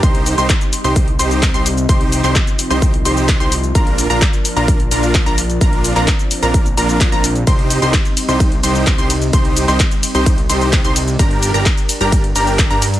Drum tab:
RD |----------------|----------------|----------------|----------------|
HH |xxoxxxoxxxoxxxox|xxoxxxoxxxoxxxox|xxoxxxoxxxoxxxox|xxoxxxoxxxoxxxox|
SH |x-xxxxxxx-xxxxxx|x-xxxxxxx-xxxxxx|x-xxxxxxx-xxxxxx|x-xxxxxxxxxxxxxx|
CP |----x-------x---|---xx-------x---|----x-------x---|---xx-------x---|
BD |o---o---o---o---|o---o---o---o---|o---o---o---o---|o---o---o---o---|

RD |x-x-x-x-x-x-x-x-|x-x-x-x-x-x-x-x-|x-x-x-x-x-x-x-x-|
HH |xxoxxxoxxxoxxxox|xxoxxxoxxxoxxxox|xxoxxxoxxxoxxxox|
SH |x-xxxxxxx-xxxxxx|x-xxxxxxx-xxxxxx|x-xxxxxxx-xxxxxx|
CP |----x-------x---|---xx-------x---|----x-------x---|
BD |o---o---o---o---|o---o---o---o---|o---o---o---o---|